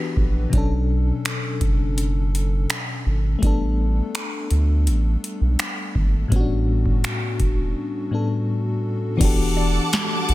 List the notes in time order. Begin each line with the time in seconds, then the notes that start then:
Already playing: E3 B3 D4 F#4 G4 B4
0.17 A#1, kick
0.49 B1 B2 F#3 C#4, kick, closed hi-hat
0.56 D4 A4
1.25 finger snap, closed hi-hat
1.61 F#1, kick, closed hi-hat
1.98 closed hi-hat
2.35 closed hi-hat
2.70 finger snap, closed hi-hat
3.06 G#1
3.39 A1 G3 A3 B3, kick, closed hi-hat
3.45 D4 A4
4.15 finger snap, closed hi-hat
4.51 D2, closed hi-hat
4.87 A1, closed hi-hat
5.24 closed hi-hat
5.41 B1
5.59 finger snap, closed hi-hat
5.95 G#1, kick
6.28 A1 A2 G3 B3, kick, closed hi-hat
6.34 C#4 F#4
6.40 D4
6.86 kick
7.04 finger snap, closed hi-hat
7.40 E1, kick, closed hi-hat
8.11 A2 G3 B3 D4 A4
9.17 E1 E3 B3 D4 A4 F#5 A5 D6, kick, closed hi-hat, crash
9.22 F#4 G4 A4
9.57 D5
9.93 snare, closed hi-hat
10.29 A1, closed hi-hat